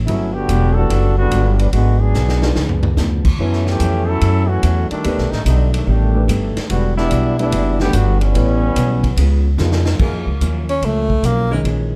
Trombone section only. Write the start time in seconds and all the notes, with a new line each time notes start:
0.06 F#3 A3 C#4 E4
0.34 D3 B3 F#4 G4
0.75 G3 D4 F#4 A4
1.18 D3 G3 B3 F#4
1.60 F#3 G3 B3 D4
1.73 D3 G#3 B3 F#4
2.01 F#3 B3 D4 G#4
3.40 F#3 A3 C#4 E4
3.68 E3 A3 C#4 G4
4.08 F#3 C#4 E4 A4
4.49 E3 A3 C#4 F#4
4.90 D#3 G3 A3 D4
5.31 D3 G3 A3 D#4
5.45 D3 G3 A3 D#4
5.74 D#3 G3 A3 D4
5.87 D#3 A3 D4 G4
6.70 D3 G3 B3 F#4
6.98 G3 B3 D4 E4
7.40 G3 B3 D4 E4
7.82 D3 F#3 B3 G4
7.95 D3 G3 B3 F#4
8.22 E3 G3 B3 C#4